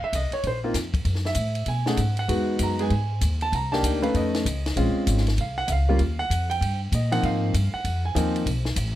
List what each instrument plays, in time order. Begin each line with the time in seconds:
0.01 grand piano E5, muted upright bass stroke
0.13 upright bass C2, grand piano D#5, kick, hi-hat pedal, ride
0.31 grand piano C#5, muted upright bass stroke, ride
0.43 upright bass A#1, grand piano C5, kick, ride
0.64 grand piano A#3 C4 D#4 F4
0.74 upright bass F2, kick, snare, hi-hat pedal, ride
0.94 kick, ride
1.05 upright bass F#2, kick, ride
1.15 snare
1.25 grand piano E5, snare
1.35 upright bass A2, kick, hi-hat pedal, ride
1.55 ride
1.66 upright bass B2, grand piano G#5, kick, ride
1.86 grand piano A3 C#4 D#4 G#4 F#5, snare
1.97 upright bass G#2, kick, hi-hat pedal, ride
2.17 grand piano F#5, ride
2.28 upright bass E2, grand piano G#3 B3 D#4 F#4, kick, ride
2.59 upright bass F#2, grand piano A#5, kick, hi-hat pedal, ride
2.79 grand piano G#3 B3 D#4 G#4 G#5, ride
2.90 upright bass G#2, kick, ride
3.21 upright bass D#2, kick, hi-hat pedal, ride
3.41 grand piano A5, ride
3.52 upright bass C2, grand piano A#5, kick, ride
3.72 grand piano A#3 D4 D#4 G4 A5, snare
3.83 upright bass D2, grand piano G5, kick, hi-hat pedal, ride
4.02 grand piano A3 C#4 D#4 B4 F5, ride
4.14 upright bass F2, grand piano D#5, kick, ride
4.35 snare, ride
4.45 upright bass C#2, kick, hi-hat pedal, ride
4.66 snare, ride
4.76 upright bass A#1, grand piano G#3 C4 C#4 F4, kick, ride
4.95 muted upright bass stroke
5.07 upright bass G#1, kick, hi-hat pedal, ride
5.17 snare
5.27 snare, ride
5.38 upright bass C2, grand piano F5, kick, ride
5.58 grand piano F#5
5.68 upright bass C#2, grand piano E5, kick, hi-hat pedal, ride
5.72 grand piano F5
5.89 grand piano G3 A#3 C#4 F4
5.99 upright bass D#2, kick, ride
6.19 grand piano F#5
6.30 upright bass F2, kick, hi-hat pedal, ride
6.50 grand piano G5, ride
6.61 upright bass G2, kick, ride
6.92 upright bass A#2, grand piano D#5, kick, hi-hat pedal, ride
7.12 grand piano F3 A#3 C4 D#4 F#5, ride
7.23 upright bass G#2, grand piano F5, kick, ride
7.54 upright bass G2, kick, hi-hat pedal, ride
7.74 grand piano F#5, muted upright bass stroke
7.84 upright bass F2, kick, ride
8.05 grand piano G#5
8.15 upright bass D#2, grand piano F3 A#3 C4 D#4, kick, hi-hat pedal, ride
8.36 ride
8.46 upright bass B1, kick, ride
8.65 snare
8.76 upright bass A1, kick, hi-hat pedal, ride